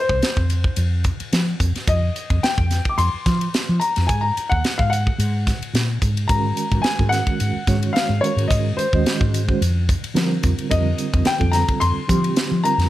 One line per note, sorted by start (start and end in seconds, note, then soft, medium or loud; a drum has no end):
0.00 0.76 C5 medium
0.09 0.19 C2 medium
0.09 kick medium
0.22 snare medium
0.22 hi-hat pedal medium
0.22 ride medium
0.37 0.67 F2 medium
0.37 kick medium
0.50 hi-hat pedal medium
0.50 ride medium
0.64 kick medium
0.76 1.09 F2 medium
0.76 hi-hat pedal medium
0.76 ride medium
1.04 kick medium
1.04 hi-hat pedal medium
1.04 ride medium
1.20 muted fretless electric bass stroke soft
1.20 ride medium
1.32 1.53 F3 medium
1.32 snare medium
1.32 hi-hat pedal medium
1.32 ride medium
1.60 1.71 F2 medium
1.60 kick medium
1.60 hi-hat pedal medium
1.60 ride medium
1.75 muted fretless electric bass stroke soft
1.75 snare soft
1.75 ride medium
1.88 2.09 F2 medium
1.88 2.45 D#5 medium
1.88 kick loud
1.88 hi-hat pedal medium
1.88 ride medium
2.16 hi-hat pedal medium
2.16 ride medium
2.30 2.40 F2 medium
2.30 kick medium
2.30 ride soft
2.43 2.93 G5 medium
2.43 muted fretless electric bass stroke soft
2.43 snare medium
2.43 hi-hat pedal medium
2.43 ride medium
2.57 2.78 F2 medium
2.57 kick medium
2.71 snare soft
2.71 hi-hat pedal medium
2.71 ride medium
2.85 kick medium
2.85 ride medium
2.89 2.97 D6 medium
2.97 3.09 F2 medium
2.97 3.83 C6 loud
2.97 hi-hat pedal medium
2.97 ride medium
3.14 muted fretless electric bass stroke soft
3.26 3.47 F3 medium
3.26 kick medium
3.26 snare soft
3.26 hi-hat pedal medium
3.26 ride medium
3.41 ride medium
3.54 snare loud
3.54 hi-hat pedal medium
3.54 ride medium
3.69 3.78 F3 medium
3.80 4.09 A#5 medium
3.80 hi-hat pedal medium
3.80 ride medium
3.96 4.06 F2 medium
3.96 snare soft
3.96 ride medium
4.07 4.29 G#2 medium
4.07 4.23 G#5 medium
4.07 kick loud
4.07 hi-hat pedal medium
4.07 ride medium
4.21 4.51 A#5 medium
4.37 muted fretless electric bass stroke soft
4.37 hi-hat pedal medium
4.37 ride medium
4.50 4.61 D#2 medium
4.50 4.79 F#5 medium
4.50 kick medium
4.64 muted fretless electric bass stroke soft
4.64 snare medium
4.64 hi-hat pedal medium
4.64 ride medium
4.78 5.09 G#2 medium
4.78 4.90 F5 medium
4.78 kick medium
4.90 5.70 F#5 medium
4.90 hi-hat pedal medium
4.90 ride medium
5.07 kick medium
5.18 5.51 G#2 medium
5.18 hi-hat pedal medium
5.18 ride medium
5.47 kick medium
5.47 snare soft
5.47 hi-hat pedal medium
5.47 ride medium
5.61 muted fretless electric bass stroke soft
5.61 ride medium
5.73 5.99 A#2 medium
5.73 snare medium
5.73 hi-hat pedal medium
5.73 ride medium
6.02 6.27 G#2 medium
6.02 kick medium
6.02 hi-hat pedal medium
6.02 ride medium
6.17 ride medium
6.28 6.51 G#2 medium
6.28 6.93 D#3 medium
6.28 6.93 G#3 medium
6.28 6.93 C#4 medium
6.28 6.93 F#4 medium
6.28 6.93 A#4 medium
6.28 6.86 A#5 medium
6.28 kick loud
6.28 hi-hat pedal medium
6.28 ride medium
6.57 hi-hat pedal medium
6.57 ride medium
6.71 6.81 G#2 medium
6.71 kick medium
6.71 ride medium
6.82 7.09 G#5 medium
6.82 muted fretless electric bass stroke soft
6.82 snare medium
6.82 hi-hat pedal medium
6.82 ride medium
6.99 7.20 G#2 medium
6.99 7.62 D#3 medium
6.99 7.62 G#3 medium
6.99 7.62 C#4 medium
6.99 7.62 F#4 medium
6.99 7.62 A#4 medium
6.99 kick medium
7.09 7.96 F#5 loud
7.09 snare soft
7.09 hi-hat pedal medium
7.09 ride medium
7.27 kick medium
7.27 ride soft
7.40 7.52 G#2 medium
7.40 hi-hat pedal medium
7.40 ride medium
7.56 muted fretless electric bass stroke soft
7.67 7.88 G#2 medium
7.67 8.18 D#3 medium
7.67 8.18 G#3 medium
7.67 8.19 C#4 medium
7.67 8.19 F#4 medium
7.67 8.19 C#5 medium
7.67 kick medium
7.67 snare soft
7.67 hi-hat pedal medium
7.67 ride medium
7.83 ride medium
7.93 8.23 F5 medium
7.93 snare medium
7.93 hi-hat pedal medium
7.93 ride medium
8.09 8.19 G#2 medium
8.21 8.87 D#3 medium
8.21 8.87 G#3 medium
8.21 8.87 C#4 medium
8.21 8.87 F#4 medium
8.21 8.87 A#4 medium
8.21 8.51 C#5 medium
8.21 hi-hat pedal medium
8.21 ride medium
8.36 8.47 G#2 medium
8.36 ride medium
8.48 8.71 G#2 medium
8.48 8.78 D#5 medium
8.48 kick loud
8.48 hi-hat pedal medium
8.48 ride medium
8.77 9.57 C5 medium
8.77 muted fretless electric bass stroke soft
8.77 hi-hat pedal medium
8.77 ride medium
8.93 9.03 D#2 medium
8.93 9.43 D#3 medium
8.93 9.43 G#3 medium
8.93 9.43 C#4 medium
8.93 9.44 F#4 medium
8.93 9.44 D#5 medium
8.93 kick medium
9.05 muted fretless electric bass stroke soft
9.05 snare medium
9.05 hi-hat pedal medium
9.05 ride medium
9.21 9.51 G#2 medium
9.21 kick medium
9.34 hi-hat pedal medium
9.34 ride medium
9.48 9.61 D#3 medium
9.48 9.61 G#3 medium
9.48 9.61 C#4 medium
9.48 9.61 F#4 medium
9.48 9.62 C5 medium
9.48 kick medium
9.61 9.93 F2 medium
9.61 hi-hat pedal medium
9.61 ride medium
9.89 kick medium
9.89 hi-hat pedal medium
9.89 ride medium
10.03 muted fretless electric bass stroke soft
10.03 ride medium
10.14 10.66 D3 medium
10.14 10.36 F3 medium
10.14 10.66 G3 medium
10.14 10.66 C4 medium
10.14 10.66 F4 medium
10.14 10.67 A#4 medium
10.14 snare loud
10.14 hi-hat pedal medium
10.14 ride medium
10.43 10.55 F2 medium
10.43 kick medium
10.43 hi-hat pedal medium
10.43 ride medium
10.58 ride medium
10.69 10.92 F2 medium
10.69 11.34 D3 medium
10.69 11.34 G3 medium
10.69 11.34 C4 medium
10.69 11.35 F4 medium
10.69 11.34 A#4 medium
10.69 11.28 D#5 medium
10.69 kick loud
10.69 hi-hat pedal medium
10.69 ride medium
10.98 hi-hat pedal medium
10.98 ride medium
11.14 11.24 F2 medium
11.14 kick medium
11.14 ride medium
11.25 11.53 G5 medium
11.25 muted fretless electric bass stroke soft
11.25 snare loud
11.25 hi-hat pedal medium
11.25 ride medium
11.39 11.62 F2 medium
11.39 12.03 D3 medium
11.39 12.03 G3 medium
11.39 12.03 C4 medium
11.39 12.03 F4 medium
11.39 12.03 A4 medium
11.39 kick medium
11.52 11.82 A#5 medium
11.52 snare soft
11.52 hi-hat pedal medium
11.52 ride medium
11.68 kick medium
11.68 ride medium
11.80 11.93 F2 medium
11.80 12.67 C6 loud
11.80 hi-hat pedal medium
11.80 ride medium
11.96 muted fretless electric bass stroke soft
12.07 12.59 D3 medium
12.07 12.30 F3 medium
12.07 12.60 G3 medium
12.07 12.60 C4 medium
12.07 12.60 F4 medium
12.07 12.60 G4 medium
12.07 kick medium
12.07 hi-hat pedal medium
12.07 ride medium
12.24 ride medium
12.36 snare loud
12.36 hi-hat pedal medium
12.36 ride medium
12.51 12.61 F3 medium
12.64 12.89 D3 medium
12.64 12.89 G3 medium
12.64 12.89 C4 medium
12.64 12.89 F4 medium
12.64 12.89 A#4 medium
12.64 12.89 A#5 medium
12.64 hi-hat pedal medium
12.64 ride medium
12.77 12.88 F2 medium
12.77 snare soft
12.77 ride medium